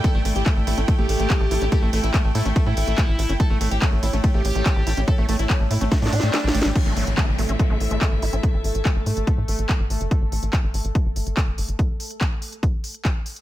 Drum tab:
CC |------------------------------------------------|------------------------------------------------|------------------------------------------------|------------------------------------------------|
RD |x-----x-----x-----x-----x-----x-----x-----x-----|x-----x-----x-----x-----x-----x-----x-----x-----|x-----x-----x-----x-----x-----x-----x-----x-----|x-----x-----x-----x-----x-----x-----x-----x-----|
HH |x-----o--x--x-----o--x--x-----o--x--x-----o--x--|x-----o--x--x-----o--x--x-----o--x--x-----o--x--|x-----o--x--x-----o--x--x-----o--x--x-----o--x--|x-----o--x--x-----o--x--x--o--o--x--x-----o--x--|
CP |------------x-----------------------x-----------|------------x-----------------------x-----------|------------x-----------------------x-----------|------------x-----------------------x-----------|
SD |------------------------------------------------|------------------------------------------------|------------------------------------------------|------------------------o---o---o---o---o---o---|
BD |o-----------o-----------o-----------o-----------|o-----------o-----------o-----------o-----------|o-----------o-----------o-----------o-----------|o-----------o-----------o-----------------------|

CC |x-----------------------------------------------|------------------------------------------------|------------------------------------------------|------------------------------------------------|
RD |------------------------------------------------|------------------------------------------------|------------------------------------------------|------------------------------------------------|
HH |x-----o--x--x-----o--x--x-----o--x--x-----o--x--|x-----o--x--x-----o--x--x-----o--x--x-----o--x--|x-----o--x--x-----o--x--x-----o--x--x-----o--x--|x-----o--x--x-----o--x--x-----o--x--x-----o--x--|
CP |------------x-----------------------x-----------|------------x-----------------------x-----------|------------x-----------------------x-----------|------------x-----------------------x-----------|
SD |------------------------------------------------|------------------------------------------------|------------------------------------------------|------------------------------------------------|
BD |o-----------o-----------o-----------o-----------|o-----------o-----------o-----------o-----------|o-----------o-----------o-----------o-----------|o-----------o-----------o-----------o-----------|